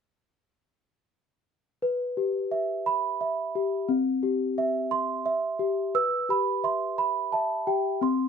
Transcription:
1.82 B4
2.17 G4
2.51 E5
2.86 B5
3.21 E5
3.55 G4
3.89 C4
4.23 G4
4.58 E5
4.91 C6
5.26 E5
5.59 G4
5.95 B4 E6
6.29 G4 B5
6.64 E5 C6
6.98 B5
7.32 E5 A5
7.67 G4 G5
8.01 C4 C6

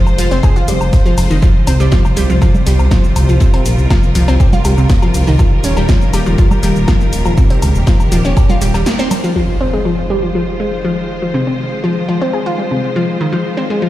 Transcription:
Already playing: D#3 G#3 F4 C5
0.07 low woodblock, shaker
0.18 F1 F3, closed hi-hat, open hi-hat, shaker
0.31 F1 C4, shaker
0.43 G#4, kick, closed hi-hat, low woodblock, shaker
0.56 F4, closed hi-hat, shaker
0.68 F1 G3, closed hi-hat, open hi-hat, shaker
0.81 F1, low woodblock, shaker
0.93 kick, snare, closed hi-hat, open hi-hat, shaker
1.06 F3, snare, shaker
1.18 F1, open hi-hat, low woodblock, shaker
1.31 F1 D#3, shaker
1.42 C3 F3 G3 F4, kick, closed hi-hat, shaker
1.67 C2 C4, closed hi-hat, open hi-hat, low woodblock, shaker
1.80 C2 G3, shaker
1.92 F3, kick, snare, closed hi-hat, shaker
2.05 low woodblock, shaker
2.16 C2 G3, closed hi-hat, open hi-hat, shaker
2.30 C2 F3, shaker
2.42 F3, kick, closed hi-hat, low woodblock, shaker
2.55 low conga, shaker
2.66 C2 G3, snare, closed hi-hat, open hi-hat, shaker
2.79 C2, low woodblock, shaker
2.91 F3, kick, snare, closed hi-hat, shaker
3.04 shaker
3.16 C2, closed hi-hat, open hi-hat, low woodblock, shaker
3.29 C2 F3, closed hi-hat, shaker
3.40 C3 A#4, kick, closed hi-hat, shaker
3.54 C4, open hi-hat, low woodblock
3.66 A#1, closed hi-hat, open hi-hat, shaker
3.78 C2, shaker
3.90 F3, kick, snare, closed hi-hat, low woodblock, shaker
4.03 shaker
4.15 C2 F3, closed hi-hat, open hi-hat, shaker
4.28 C2 C4, low woodblock, shaker
4.40 G4, kick, closed hi-hat, shaker
4.53 F4, closed hi-hat, low conga, shaker
4.65 C2 G3, closed hi-hat, open hi-hat, low woodblock, shaker
4.78 C2 C3, shaker
4.90 kick, snare, closed hi-hat, open hi-hat, shaker
5.02 F3, snare, low woodblock, shaker
5.14 C2, open hi-hat, shaker
5.27 C2 D#3, shaker
5.39 D#3 F3, kick, closed hi-hat, low woodblock, shaker
5.64 D#1 C#4, closed hi-hat, open hi-hat, shaker
5.77 D#1 G3, low woodblock, shaker
5.89 F3, kick, snare, closed hi-hat, shaker
6.02 shaker
6.13 D#1 G3, closed hi-hat, open hi-hat, low woodblock, shaker
6.26 D#1 F3, shaker
6.38 F3, kick, closed hi-hat, shaker
6.51 low conga, low woodblock, shaker
6.63 D#1 G3, closed hi-hat, open hi-hat, shaker
6.76 D#1, shaker
6.88 F3, kick, snare, closed hi-hat, low woodblock, shaker
7.01 shaker
7.13 D#1, closed hi-hat, open hi-hat, shaker
7.25 D#1 F3, closed hi-hat, low woodblock, shaker
7.37 C3 G4, kick, closed hi-hat, shaker
7.50 C4, open hi-hat
7.62 C#2, closed hi-hat, open hi-hat, low woodblock, shaker
7.75 D#1, shaker
7.87 F3, kick, snare, closed hi-hat, shaker
8.00 low woodblock, shaker
8.12 D#1 F3, closed hi-hat, open hi-hat, shaker
8.25 D#1 C#4, shaker
8.37 G4, kick, closed hi-hat, low woodblock, shaker
8.50 F4, closed hi-hat, low conga, shaker
8.61 D#1 G3, snare, closed hi-hat, open hi-hat, shaker
8.74 D#1 G3, snare, closed hi-hat, low woodblock, shaker
8.86 snare, closed hi-hat, open hi-hat, shaker
8.99 C4, snare, shaker
9.11 open hi-hat, low conga, low woodblock, shaker
9.24 F3, shaker
9.36 D#3 F3 G#3 F4 C5, impact
9.61 C4
9.73 G#3
9.85 F3
10.10 G3
10.23 F3
10.35 F3
10.60 G#3
10.85 F3
11.22 F3
11.34 C3
11.47 C4
11.84 F3
12.09 F3
12.21 C4
12.33 G#4
12.46 F4
12.58 G3
12.71 C3
12.96 F3
13.21 D#3
13.33 F3
13.57 C4
13.70 G#3
13.82 F3

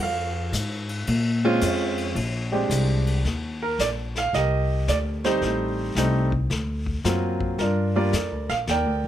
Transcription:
0.00 F2 F5
0.52 G#2, hi-hat pedal, ride
0.89 ride
1.07 A#2, ride
1.44 G#3 C4 C#4 F4
1.61 F2, hi-hat pedal, ride
1.98 ride
2.15 A#1, ride
2.52 G#3 C4 D4 G4
2.70 C2, hi-hat pedal, ride
3.07 ride
3.24 D#2, brush sweep, snare
3.62 A#4
3.79 A#1 D5, snare, hi-hat pedal
4.15 F5, snare
4.33 C2 G4 A#4 D#5, brush sweep, snare
4.88 D2 D5, snare, hi-hat pedal
5.24 G3 A3 C4 D#4 G4 C5, snare
5.42 A1, brush sweep, snare
5.95 C2 G3 A3 C4 D#4, snare, hi-hat pedal
6.32 kick
6.50 D2, brush sweep, snare
6.86 kick
7.04 F#2 F#3 A#3 C4 F4, snare, hi-hat pedal
7.41 kick
7.58 G2 D4 F4 A#4, brush sweep, snare
7.96 G3 A#3 D4 F4 A#4 D5
8.13 F2, snare, hi-hat pedal
8.31 D2
8.49 A#1 F5, snare
8.67 D#2 A#4 D5 G5, brush sweep, snare
8.86 D2
9.04 A#1

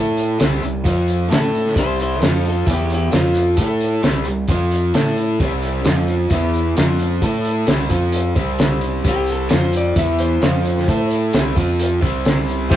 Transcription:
Already playing: A2 A3 E4 A4
0.17 closed hi-hat
0.39 C2 C3 G3 C4, snare, closed hi-hat
0.63 C2 C3 G3, closed hi-hat
0.84 F2 F3 C4 F4, kick, closed hi-hat
1.08 closed hi-hat
1.29 A2 A3 E4 A4, snare, closed hi-hat
1.55 closed hi-hat
1.66 snare
1.74 C2 C3 G3 C4 E4, kick, closed hi-hat
1.79 C5
2.00 E4 C5, closed hi-hat
2.21 F2 F3 C4 F4, snare, closed hi-hat
2.25 F4 A4
2.45 F4, closed hi-hat
2.50 A4
2.66 E2 E3 B3 E4, kick, closed hi-hat
2.73 E4 G4
2.90 closed hi-hat
2.95 E4 G4
3.11 F2 F3 C4 F4, snare, closed hi-hat
3.16 F4
3.35 closed hi-hat
3.57 A2 A3 E4 A4, kick, closed hi-hat
3.81 closed hi-hat
4.03 C2 C3 G3 C4, snare, closed hi-hat
4.25 C2 C3 G3, closed hi-hat
4.48 F2 F3 C4 F4, kick, closed hi-hat
4.71 closed hi-hat
4.94 A2 A3 E4 A4, snare, closed hi-hat
5.17 closed hi-hat
5.40 C2 C3 G3 C4, kick, closed hi-hat
5.62 closed hi-hat
5.84 F2 F3 C4 F4, snare, closed hi-hat
6.08 closed hi-hat
6.30 E2 E3 B3 E4, kick, closed hi-hat
6.54 closed hi-hat
6.77 F2 F3 C4 F4, snare, closed hi-hat
6.99 closed hi-hat
7.22 A2 A3 E4 A4, kick, closed hi-hat
7.45 closed hi-hat
7.67 C2 C3 G3 C4, snare, closed hi-hat
7.89 F2 F3 C4 F4, kick, closed hi-hat
8.12 closed hi-hat
8.35 C2 C3 G3 C4, kick, closed hi-hat
8.59 snare, closed hi-hat
8.81 closed hi-hat
9.05 C2 C3 G3 C4, kick, closed hi-hat
9.09 G4
9.27 closed hi-hat
9.32 A4
9.50 F2 F3 C4 F4, snare, closed hi-hat
9.54 C5
9.73 closed hi-hat
9.77 D5
9.96 E2 E3 B3 E4 E5, kick, closed hi-hat
10.19 C5, closed hi-hat
10.42 F2 F3 C4 F4, snare, closed hi-hat
10.65 closed hi-hat
10.78 snare
10.88 A2 A3 E4 A4, kick, closed hi-hat
11.11 closed hi-hat
11.33 C2 C3 G3 C4, snare, closed hi-hat
11.56 F2 F3 C4 F4, kick, closed hi-hat
11.80 closed hi-hat
12.01 C2 C3 G3 C4, kick, closed hi-hat
12.25 snare, closed hi-hat
12.48 closed hi-hat
12.69 C2 C3 G3 C4 E4 G4 C5 E5, kick, crash

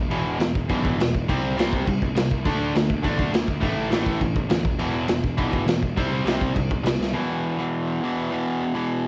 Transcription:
0.10 E1 E2 B2 E3, crash
0.27 E1
0.39 E1 E2 B2, snare, crash
0.55 E1, kick
0.69 B1 E2 B2 E3, kick, crash
0.85 G#1, kick
0.99 E1 E2 B2, snare, crash
1.14 kick
1.29 C2 C3 G3 C4, kick, crash
1.42 C2
1.57 C2 C3 G3 C4, snare, crash
1.73 C2, kick
1.86 C2 C3 G3, kick, crash
2.02 C2, kick
2.16 C2 C3 G3, snare, crash
2.31 C2, kick
2.45 D2 D3 A3 D4, kick, crash
2.60 D2
2.75 D2 D3 A3, snare, crash
2.90 D2, kick
3.03 A1 D3 A3 D4, kick, crash
3.19 F#2, kick
3.32 D2 D3 A3, snare, crash
3.48 kick
3.61 A1 A2 E3 A3, kick, crash
3.76 A1
3.90 A1 A2 E3 A3, snare, crash
4.06 A1, kick
4.20 A1 A2 E3, kick, crash
4.35 A1, kick
4.49 D2 A2 E3, snare, crash
4.64 E1, kick
4.79 E1 E2 B2 E3, crash
4.94 E1
5.08 E1 E2 B2, snare, crash
5.24 E1, kick
5.37 B1 E2 B2 E3, kick, crash
5.53 G#1, kick
5.67 E1 E2 B2, snare, crash
5.83 kick
5.97 C2 C3 G3 C4, kick, crash
6.12 C2
6.25 C2 C3 G3 C4, snare, crash
6.41 C2, kick
6.54 C2 C3 G3, kick, crash
6.71 C2, kick
6.84 C2 C3 G3, snare, crash
6.99 C2, snare
7.13 E2 B2 E3
7.59 E2 B2 E3
8.02 E2 B2 E3
8.31 E2 B2 E3
8.74 E2 B2 E3

